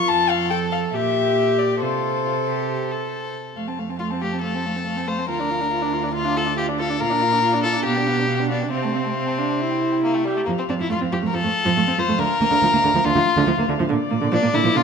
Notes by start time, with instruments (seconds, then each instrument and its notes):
Already playing: viola F4
0.08 cello F2, violin A4 A5
0.30 violin F5
0.50 viola A4, violin G5
0.72 violin F5
0.92 cello A#2, viola G4, violin G4 E5
1.59 violin D5
1.81 cello C3, violin F4 C5, viola A4
2.25 violin F4
2.48 violin G4
2.91 violin A4
3.56 cello F2, viola A3, violin F5
3.68 viola C4, violin A5
3.79 viola A3, violin F5
3.89 viola C4, violin A5
3.99 viola A3, violin F4 F5
4.11 viola C4, violin A5
4.21 viola A3, violin G4 F5
4.33 viola C4, violin A5
4.42 viola A3, violin A4 F5
4.55 viola C4, violin A5
4.66 viola A3, violin F5
4.76 viola C4, violin A5
4.86 viola A3, violin F5
4.96 viola C4, violin A5
5.07 viola A3, violin C5 F5
5.18 viola C4, violin A5
5.29 cello D2, viola F4, violin A#4 F5
5.39 viola D4, violin D5
5.50 viola F4, violin F5
5.60 viola D4, violin D5
5.70 viola F4, violin F5
5.82 viola D4, violin D5
5.93 viola F4, violin F5
6.03 viola D4, violin D5
6.13 viola F4, violin F4 F5
6.25 viola D4, violin D5
6.35 viola F4, violin A4 F5
6.46 viola D4, violin D5
6.57 viola F4, violin G4 F5
6.68 viola D4, violin D5
6.79 viola F4, violin A4 F5
6.89 viola D4, violin D5
7.00 cello A#2, viola F4, violin A#4 F5
7.10 viola D4, violin D5
7.21 viola F4, violin F5
7.32 viola D4, violin D5
7.42 viola F4, violin F5
7.52 viola D4, violin D5
7.63 viola F4, violin A4 F5
7.73 viola D4, violin D5
7.84 cello B2, viola B3, violin G4 F5
7.96 viola D4, violin G5
8.07 viola B3, violin F5
8.17 viola D4, violin G5
8.28 viola B3, violin F5
8.38 viola D4, violin G5
8.49 viola B3, violin D4 F5
8.61 viola D4, violin G5
8.71 cello C3, violin C4 F5, viola C4
8.83 viola A3, violin A5
8.93 viola C4, violin F5
9.04 viola A3, violin A5
9.15 viola C4, violin F5
9.26 violin A5
9.38 viola D4, violin F5
9.49 violin A5
9.60 viola E4, violin E5
9.71 violin G5
9.82 violin E5
9.92 violin G5
10.03 violin A#3 E5
10.15 violin A3 G5
10.25 violin G3 E5, viola G4
10.36 violin A3 G5
10.46 cello F2, viola F3, violin A#3 F5
10.58 violin C4
10.69 cello F2, viola C4, violin D4
10.79 cello F2, viola F3, violin E4
10.90 cello F2, viola A3, violin F4
11.01 cello F2, viola C4
11.12 cello F2, viola F3, violin G4
11.22 cello F2, viola A3
11.27 violin A#4
11.33 cello F2, viola F3, violin A4
11.44 cello F2, viola A3
11.65 cello F2, viola F3
11.77 cello F2, viola A3
11.87 cello F2, viola C4
11.98 cello F2, viola F3, violin C5
12.08 cello F2, viola A3
12.18 cello D2, viola D3, violin A#4
12.41 cello D2, viola A#3
12.51 cello D2, viola D3
12.63 cello D2, viola F3
12.73 cello D2, viola A#3
12.84 cello D2, viola D3
12.95 cello D2, viola F3
13.05 cello D2, viola D3, violin F4
13.15 cello D2, viola F3
13.37 cello D2, viola D3
13.47 cello D2, viola F3
13.58 cello D2, viola A#3
13.69 cello D2, viola D3
13.80 cello D2, viola F3
13.89 cello A#2, viola D3, violin D5
14.10 cello A#2, viola A#3
14.21 cello A#2, viola D3
14.32 cello A#2, viola F3, violin D4
14.42 cello A#2, viola A#3
14.53 cello A#2, viola D3, violin E4
14.64 cello A#2, viola F3
14.75 cello B2, viola D3, violin F4